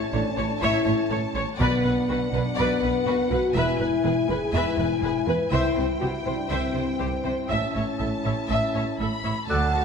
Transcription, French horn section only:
0, 0, Header, 1, 2, 480
1, 0, Start_track
1, 0, Tempo, 488998
1, 1569, Time_signature, 4, 2, 24, 8
1, 5896, Tempo, 497512
1, 9600, End_track
2, 0, Start_track
2, 0, Title_t, "French horn section"
2, 0, Program_c, 0, 60
2, 127, Note_on_c, 0, 62, 75
2, 287, Note_off_c, 0, 62, 0
2, 298, Note_on_c, 0, 61, 69
2, 368, Note_off_c, 0, 61, 0
2, 460, Note_on_c, 0, 62, 56
2, 530, Note_off_c, 0, 62, 0
2, 607, Note_on_c, 0, 64, 70
2, 1078, Note_off_c, 0, 64, 0
2, 1563, Note_on_c, 0, 59, 82
2, 2248, Note_off_c, 0, 59, 0
2, 2275, Note_on_c, 0, 62, 58
2, 2387, Note_off_c, 0, 62, 0
2, 2514, Note_on_c, 0, 59, 70
2, 3229, Note_off_c, 0, 59, 0
2, 3244, Note_on_c, 0, 66, 65
2, 3488, Note_off_c, 0, 66, 0
2, 3490, Note_on_c, 0, 64, 78
2, 4208, Note_on_c, 0, 68, 65
2, 4211, Note_off_c, 0, 64, 0
2, 4451, Note_off_c, 0, 68, 0
2, 4453, Note_on_c, 0, 64, 69
2, 5161, Note_off_c, 0, 64, 0
2, 5180, Note_on_c, 0, 71, 68
2, 5412, Note_on_c, 0, 64, 67
2, 5417, Note_off_c, 0, 71, 0
2, 5885, Note_off_c, 0, 64, 0
2, 5893, Note_on_c, 0, 66, 64
2, 5965, Note_off_c, 0, 66, 0
2, 6071, Note_on_c, 0, 64, 53
2, 6215, Note_on_c, 0, 62, 47
2, 6218, Note_off_c, 0, 64, 0
2, 6369, Note_off_c, 0, 62, 0
2, 6376, Note_on_c, 0, 60, 61
2, 7314, Note_off_c, 0, 60, 0
2, 7338, Note_on_c, 0, 61, 52
2, 9021, Note_off_c, 0, 61, 0
2, 9249, Note_on_c, 0, 66, 48
2, 9253, Note_on_c, 0, 57, 49
2, 9600, Note_off_c, 0, 57, 0
2, 9600, Note_off_c, 0, 66, 0
2, 9600, End_track
0, 0, End_of_file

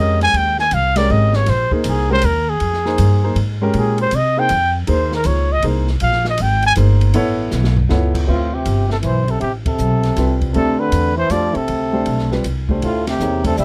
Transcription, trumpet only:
0, 0, Header, 1, 2, 480
1, 0, Start_track
1, 0, Tempo, 378072
1, 432, Time_signature, 3, 2, 24, 8
1, 17325, End_track
2, 0, Start_track
2, 0, Title_t, "Trumpet"
2, 0, Program_c, 0, 56
2, 0, Note_on_c, 0, 75, 89
2, 284, Note_off_c, 0, 75, 0
2, 290, Note_on_c, 0, 80, 125
2, 470, Note_on_c, 0, 79, 107
2, 489, Note_off_c, 0, 80, 0
2, 756, Note_off_c, 0, 79, 0
2, 764, Note_on_c, 0, 80, 116
2, 940, Note_on_c, 0, 77, 110
2, 959, Note_off_c, 0, 80, 0
2, 1235, Note_on_c, 0, 74, 107
2, 1254, Note_off_c, 0, 77, 0
2, 1414, Note_on_c, 0, 75, 100
2, 1433, Note_off_c, 0, 74, 0
2, 1725, Note_on_c, 0, 73, 95
2, 1744, Note_off_c, 0, 75, 0
2, 1897, Note_on_c, 0, 72, 99
2, 1916, Note_off_c, 0, 73, 0
2, 2201, Note_off_c, 0, 72, 0
2, 2216, Note_on_c, 0, 63, 57
2, 2386, Note_on_c, 0, 68, 86
2, 2405, Note_off_c, 0, 63, 0
2, 2685, Note_off_c, 0, 68, 0
2, 2700, Note_on_c, 0, 72, 117
2, 2860, Note_on_c, 0, 70, 97
2, 2879, Note_off_c, 0, 72, 0
2, 3169, Note_on_c, 0, 68, 96
2, 3188, Note_off_c, 0, 70, 0
2, 4280, Note_off_c, 0, 68, 0
2, 4790, Note_on_c, 0, 68, 80
2, 5066, Note_off_c, 0, 68, 0
2, 5096, Note_on_c, 0, 72, 107
2, 5276, Note_on_c, 0, 75, 100
2, 5295, Note_off_c, 0, 72, 0
2, 5573, Note_on_c, 0, 79, 121
2, 5592, Note_off_c, 0, 75, 0
2, 6039, Note_off_c, 0, 79, 0
2, 6225, Note_on_c, 0, 72, 85
2, 6503, Note_off_c, 0, 72, 0
2, 6544, Note_on_c, 0, 70, 94
2, 6682, Note_on_c, 0, 73, 92
2, 6701, Note_off_c, 0, 70, 0
2, 7014, Note_on_c, 0, 75, 111
2, 7033, Note_off_c, 0, 73, 0
2, 7162, Note_off_c, 0, 75, 0
2, 7651, Note_on_c, 0, 77, 106
2, 7934, Note_off_c, 0, 77, 0
2, 7992, Note_on_c, 0, 75, 94
2, 8149, Note_on_c, 0, 79, 96
2, 8168, Note_off_c, 0, 75, 0
2, 8444, Note_off_c, 0, 79, 0
2, 8461, Note_on_c, 0, 80, 127
2, 8547, Note_off_c, 0, 80, 0
2, 10523, Note_on_c, 0, 65, 76
2, 10846, Note_on_c, 0, 67, 73
2, 10865, Note_off_c, 0, 65, 0
2, 11315, Note_off_c, 0, 67, 0
2, 11327, Note_on_c, 0, 69, 80
2, 11395, Note_off_c, 0, 69, 0
2, 11495, Note_on_c, 0, 72, 77
2, 11820, Note_on_c, 0, 69, 73
2, 11840, Note_off_c, 0, 72, 0
2, 11946, Note_off_c, 0, 69, 0
2, 11954, Note_on_c, 0, 67, 80
2, 12095, Note_off_c, 0, 67, 0
2, 12281, Note_on_c, 0, 69, 84
2, 13183, Note_off_c, 0, 69, 0
2, 13390, Note_on_c, 0, 69, 88
2, 13708, Note_on_c, 0, 71, 98
2, 13727, Note_off_c, 0, 69, 0
2, 14184, Note_off_c, 0, 71, 0
2, 14191, Note_on_c, 0, 72, 96
2, 14368, Note_on_c, 0, 74, 87
2, 14387, Note_off_c, 0, 72, 0
2, 14681, Note_on_c, 0, 69, 86
2, 14700, Note_off_c, 0, 74, 0
2, 15729, Note_off_c, 0, 69, 0
2, 16307, Note_on_c, 0, 65, 82
2, 16587, Note_off_c, 0, 65, 0
2, 16611, Note_on_c, 0, 67, 84
2, 17048, Note_off_c, 0, 67, 0
2, 17091, Note_on_c, 0, 69, 87
2, 17233, Note_off_c, 0, 69, 0
2, 17253, Note_on_c, 0, 76, 83
2, 17325, Note_off_c, 0, 76, 0
2, 17325, End_track
0, 0, End_of_file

